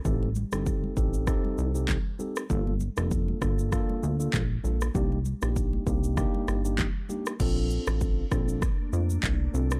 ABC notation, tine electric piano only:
X:1
M:4/4
L:1/16
Q:"Swing 16ths" 1/4=98
K:Bb
V:1 name="Tine electric piano"
[CEGA] z2 [CEGA]3 [CEGA]2 [CEGA]3 [CEGA] z2 [CEGA] z | [B,DFA] z2 [B,DFA]3 [B,DFA]2 [B,DFA]3 [B,DFA] z2 [B,DFA] z | [B,DEG] z2 [B,DEG]3 [B,DEG]2 [B,DEG]3 [B,DEG] z2 [B,DEG] z | [CDFA]6 [CDFA]2 z6 [CDFA] z |]